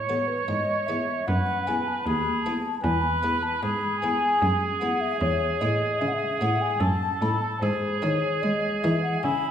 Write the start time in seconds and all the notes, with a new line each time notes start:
Already playing: A2 C#5
0.07 B3 F#4 A4 C#5
0.27 B4
0.47 G#2 G#3 D#5
0.86 B3 E4 G#4 E5
1.27 F#2 B4 F#5
1.67 B3 E4 G#4 G#5
1.87 A5
2.04 D#2 G#4 B5
2.43 B3 E4 G#4 A5
2.81 E2 B4 G#5
3.02 B5
3.23 B3 E4 G#4
3.43 A5
3.62 G#2 G#4 B5
4.00 B3 E4 G#4 G#5
4.42 F#2
4.80 B3 E4 G#4 F#5
5.01 E5
5.21 E2 C#5
5.61 A2 C#4 E4 G#4 D#5
5.99 C#3 E5
6.08 F#5
6.13 E5
6.41 A2 C#4 E4 G#4 F#5
6.62 G#5
6.80 F#2 A4 A5
7.21 A2 D#4 A4 B5
7.42 A5
7.61 G#2 G#3 G#4 C5
8.02 D#3 D#4 G#4 C#5
8.42 G#3 D#5
8.83 E3 D#4 G#4 E5
9.03 F#5
9.22 C#3 E4 G#5